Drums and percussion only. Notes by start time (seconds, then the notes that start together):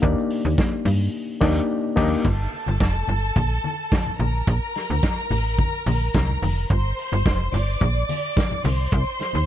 0.03 kick, closed hi-hat, shaker
0.17 shaker
0.30 open hi-hat, shaker
0.45 high conga, shaker
0.58 kick, snare, closed hi-hat, muted conga, shaker
0.73 shaker
0.86 open hi-hat, muted conga, low conga, shaker
1.00 shaker
1.41 kick, snare, crash
1.97 kick, snare, crash
2.24 kick, closed hi-hat, muted conga
2.53 muted conga
2.66 high conga
2.80 kick, snare, closed hi-hat, muted conga
3.08 muted conga, low conga
3.36 kick, closed hi-hat, muted conga, high conga, low conga
3.64 high conga
3.91 kick, snare, closed hi-hat, muted conga, high conga
4.07 low conga
4.21 high conga
4.47 kick, closed hi-hat, muted conga
4.75 snare, open hi-hat, muted conga
4.90 high conga
5.03 kick, snare, closed hi-hat, muted conga
5.30 open hi-hat, low conga
5.58 kick, closed hi-hat, muted conga, high conga, low conga
5.86 open hi-hat, muted conga, high conga
6.14 kick, snare, closed hi-hat, muted conga, high conga
6.30 low conga
6.42 open hi-hat, muted conga, high conga
6.70 kick, closed hi-hat, muted conga
6.98 open hi-hat
7.12 high conga
7.26 kick, snare, closed hi-hat, muted conga
7.52 open hi-hat, muted conga, low conga
7.81 kick, closed hi-hat, muted conga, high conga, low conga
8.09 open hi-hat, muted conga, high conga
8.36 kick, snare, closed hi-hat, muted conga, high conga
8.51 low conga
8.64 open hi-hat, high conga
8.92 kick, closed hi-hat
9.20 snare, open hi-hat, muted conga
9.33 high conga